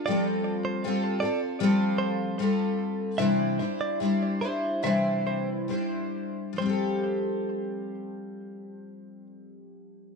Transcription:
X:1
M:4/4
L:1/16
Q:"Swing 16ths" 1/4=71
K:F
V:1 name="Clean electric guitar"
d z2 c2 z d z3 c2 z4 | e z2 d z2 c2 e2 c z4 z | c12 z4 |]
V:2 name="Twelve-string acoustic guitar"
[F,G,CFA]4 [G,CFA]2 [CFA]2 [F,G,CFA]4 [G,CFA]4 | [C,E,G,DEc]2 [G,DEc]2 [G,DEc]2 [G,DEc]2 [C,E,G,DEc]4 [G,DEc]4 | [F,G,CGA]16 |]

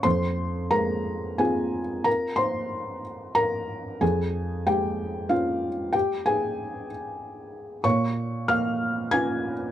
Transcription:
X:1
M:3/4
L:1/8
Q:1/4=93
K:Fm
V:1 name="Felt piano"
[cc']2 [Bb]2 [Aa]2 | [Bb] [cc']2 z [Bb]2 | [Aa]2 [Gg]2 [Ff]2 | [Gg] [Aa]2 z3 |
[dd']2 [ff']2 [aa']2 |]
V:2 name="Felt piano"
F,,2 A,2 [CF]2- | [CF]6 | F,,2 A,2 D2- | D6 |
B,,2 B,2 [DF]2 |]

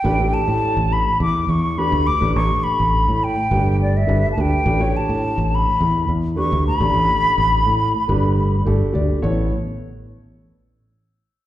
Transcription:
X:1
M:4/4
L:1/16
Q:1/4=105
K:Amix
V:1 name="Flute"
g2 a4 b2 d'2 c'2 b2 d'2 | c'2 b4 g4 d e2- e/2 a/2 g2- | g2 a4 b4 z2 c'2 b2- | b12 z4 |
z16 |]
V:2 name="Grand piano"
[A,DGB] [A,DGA]6 z4 z [A,DGB]2 z [A,DGB]- | [A,DGB]4- [A,DGB] z3 [A,DGB]3 z [A,DGB]2 [A,DGB]2 | [A,DGB] [A,DGc]6 z4 z [A,DGB]2 z [A,DGd]- | [A,DGd]4- [A,DGd] z3 [A,DGB]3 z [A,DGA]2 [A,DGd]2 |
[B,EAc]2 z12 z2 |]
V:3 name="Fingered electric bass" clef=bass
A,,,2 z A,,2 A,,,2 z E,,2 E,,2 z D,, z A,,, | A,,, z2 A,,,2 A,,2 z G,,,4 G,,, z D,, z | A,,,2 z A,,2 A,,,2 z E,,2 E,,2 z D,, z A,,, | A,,, z2 A,,,2 A,,2 z G,,,4 G,,, z D,, z |
A,,,2 z12 z2 |]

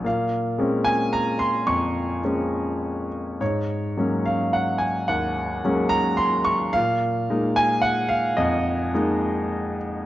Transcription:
X:1
M:3/4
L:1/8
Q:1/4=108
K:Bbm
V:1 name="Grand piano"
f3 a b c' | d'4- d' z | d3 f g a | g3 b c' d' |
f3 a g f | e4- e z |]
V:2 name="Grand piano"
B,,2 [A,B,CD]4 | F,,2 [A,B,CD]4 | A,,2 [G,A,B,D]4 | E,,2 [G,A,B,D]4 |
B,,2 [A,B,E]4 | F,,2 [A,B,E]4 |]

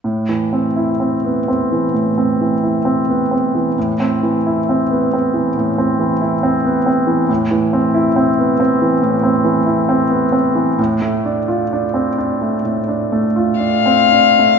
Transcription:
X:1
M:4/4
L:1/16
Q:1/4=66
K:Am
V:1 name="Violin"
z16 | z16 | z16 | z12 f4 |]
V:2 name="Grand piano"
A,, E, C E C B, C E, A,, C E, E C B, C E, | A,, C E, E C B, C E, A,, C E, E C B, C E, | A,, E, C E C B, C E, A,, C E, E C B, C E, | A,, A, D F D C D A, A,, D A, F D C D A, |]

